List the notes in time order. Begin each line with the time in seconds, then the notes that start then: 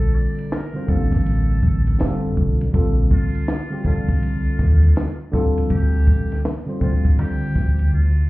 Already playing: A#1 D3 G3 C4 F4 A4
0.02 maracas
0.15 D5, maracas
0.37 ride, maracas
0.52 A#4, snare, hi-hat pedal, ride, maracas
0.73 D3 G3 C4 F4 C5, maracas
0.87 A1 D3 G3 A#3 C4 F4 A4, kick, low conga, maracas
1.12 kick, snare, ride, maracas
1.26 ride, high conga, maracas
1.50 maracas
1.63 kick, high conga, low conga, maracas
1.87 ride, high conga, maracas
1.98 F1 D3 G3 C4 F4 A4, snare, hi-hat pedal, ride, maracas
2.24 maracas
2.37 B1, kick, low conga, maracas
2.61 ride, high conga, maracas
2.72 A#1 D3 G3 C4 F4 A4, kick, ride, maracas
2.98 maracas
3.11 F4, kick, maracas
3.33 ride, maracas
3.48 snare, hi-hat pedal, ride, maracas
3.70 D3 G3 C4 F4 G4, maracas
3.84 C2 D3 G3 C4 F4 A4, kick, low conga, maracas
4.09 kick, ride, maracas
4.22 ride, high conga, maracas
4.46 maracas
4.59 D#2, kick, snare, high conga, low conga, maracas
4.83 ride, high conga, maracas
4.96 snare, hi-hat pedal, ride, maracas
5.20 maracas
5.32 D2 D3 G3 C4 F4 A4, kick, snare, low conga, maracas
5.58 ride, high conga, maracas
5.70 D2 G4, kick, ride, maracas
5.94 maracas
6.07 kick, maracas
6.30 snare, ride, maracas
6.45 snare, hi-hat pedal, ride, maracas
6.66 D3 G3 C4 F4 C5, maracas
6.79 D2 D3 G3 C4 F4 C5, kick, low conga, maracas
7.05 kick, ride, maracas
7.19 D3 G4, ride, high conga, maracas
7.43 maracas
7.56 D2, kick, snare, high conga, low conga, maracas
7.79 ride, high conga, maracas
7.93 D2 F4, maracas
8.17 maracas